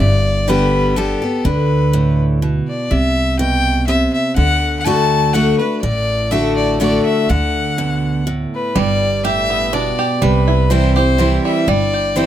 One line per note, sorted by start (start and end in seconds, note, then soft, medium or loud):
0.00 1.14 G1 medium
0.00 0.92 G2 medium
0.00 0.49 D5 loud
0.48 0.94 D3 medium
0.48 0.94 G3 medium
0.48 0.95 B3 medium
0.48 0.95 G4 loud
0.48 0.98 B4 loud
0.96 1.21 D3 medium
0.96 1.21 G3 medium
0.96 1.22 B3 loud
0.96 1.20 G4 medium
0.96 1.47 A4 medium
1.22 1.45 B3 medium
1.22 1.44 G4 medium
1.45 2.60 D2 medium
1.45 2.38 D3 medium
1.45 2.19 B4 medium
1.93 2.40 A2 medium
2.42 2.89 B2 medium
2.67 2.93 D5 medium
2.91 4.06 C2 medium
2.91 3.84 C3 medium
2.91 3.39 E5 loud
3.39 3.86 B2 loud
3.39 3.85 G5 loud
3.88 4.35 C3 medium
3.88 4.12 E5 loud
4.13 4.35 E5 medium
4.36 5.52 D2 medium
4.36 4.84 D3 medium
4.36 4.76 F#5 loud
4.79 4.86 F#5 medium
4.84 5.32 D3 loud
4.84 5.33 A3 loud
4.84 5.33 D4 medium
4.84 5.33 F#4 loud
4.84 5.35 A5 loud
5.33 5.59 D3 medium
5.33 5.59 A3 loud
5.33 5.59 D4 medium
5.33 5.58 F#4 loud
5.33 5.58 F#5 loud
5.59 5.83 D4 soft
5.59 5.82 F#4 medium
5.59 5.81 B4 medium
5.81 6.98 A1 medium
5.81 6.76 A2 medium
5.81 6.32 D5 loud
6.31 6.78 D3 loud
6.31 6.78 A3 medium
6.31 6.79 D4 loud
6.31 6.79 F#4 loud
6.31 6.55 E5 medium
6.56 6.78 D5 medium
6.80 7.27 D3 medium
6.80 7.27 A3 medium
6.80 7.27 D4 loud
6.80 7.28 F#4 loud
6.80 7.04 D5 medium
7.06 7.31 E5 medium
7.29 8.45 D2 medium
7.29 8.22 D3 medium
7.29 8.27 F#5 loud
7.78 8.25 B2 medium
8.27 8.73 A2 medium
8.55 8.79 B4 medium
8.75 9.91 G1 medium
8.75 9.68 G2 loud
8.75 10.15 G3 medium
8.75 9.25 D5 loud
9.24 9.71 A2 medium
9.24 9.98 G4 medium
9.24 9.75 E5 loud
9.50 10.17 B3 medium
9.73 10.20 B2 medium
9.73 10.22 D4 medium
9.73 10.24 D5 loud
9.99 10.96 G4 medium
10.22 11.37 C2 medium
10.22 11.15 C3 medium
10.22 11.45 G3 medium
10.22 10.72 B4 medium
10.48 11.88 E4 medium
10.70 10.95 E3 medium
10.70 10.95 G3 medium
10.70 11.19 C4 medium
10.70 10.96 C4 loud
10.70 10.94 E4 loud
10.70 10.94 C5 medium
10.95 11.18 C4 soft
10.95 11.18 E4 medium
10.95 11.93 G4 medium
10.95 11.41 C5 loud
11.18 11.65 E3 medium
11.18 11.66 G3 medium
11.18 12.26 C4 medium
11.18 11.66 C4 medium
11.18 11.66 E4 medium
11.44 11.68 G3 medium
11.44 11.69 E5 medium
11.68 12.26 G1 medium
11.68 12.26 G2 medium
11.68 12.17 G3 medium
11.68 12.18 D5 loud
11.94 12.26 G4 medium
12.16 12.26 E3 medium
12.16 12.26 G3 medium
12.16 12.26 C4 loud
12.16 12.26 E4 loud
12.16 12.26 C5 loud